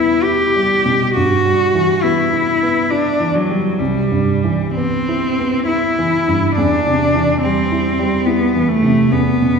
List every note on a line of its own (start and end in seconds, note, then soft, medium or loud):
0.00 1.13 E2 soft
0.00 0.85 B2 soft
0.00 0.56 G3 soft
0.00 1.18 B3 soft
0.00 0.11 E4 soft
0.00 0.24 E4 soft
0.23 0.73 E4 soft
0.23 1.14 G4 medium
0.56 1.05 G3 soft
0.85 1.16 B2 soft
1.14 3.76 G2 soft
1.14 2.05 F#4 medium
1.46 1.92 G3 soft
1.75 2.21 E3 soft
2.03 2.50 B3 soft
2.03 2.92 E4 medium
2.33 2.79 E4 soft
2.63 3.09 B3 soft
2.91 3.35 D4 soft
2.91 3.38 E4 soft
3.20 3.68 E3 soft
3.34 3.81 F#3 soft
3.49 3.79 G3 soft
3.79 6.53 C2 soft
3.79 4.75 G3 soft
4.11 4.64 G2 soft
4.44 4.96 E3 soft
4.76 5.26 B3 soft
4.76 5.66 C4 medium
5.09 5.57 E4 soft
5.39 5.87 B3 soft
5.67 6.54 E4 medium
5.67 6.16 E4 soft
5.99 6.46 E3 soft
6.28 6.57 G2 soft
6.56 9.08 E2 soft
6.56 7.41 D4 medium
6.86 7.32 C3 soft
7.15 7.60 E3 soft
7.42 7.89 G3 soft
7.42 8.28 C4 medium
7.72 8.17 E4 soft
7.99 8.44 G3 soft
8.26 8.70 B3 medium
8.26 8.72 E4 soft
8.55 9.00 E3 soft
8.69 9.13 A3 medium
8.82 9.11 C3 soft
9.12 9.59 E2 soft
9.12 9.59 B3 medium
9.42 9.59 B2 soft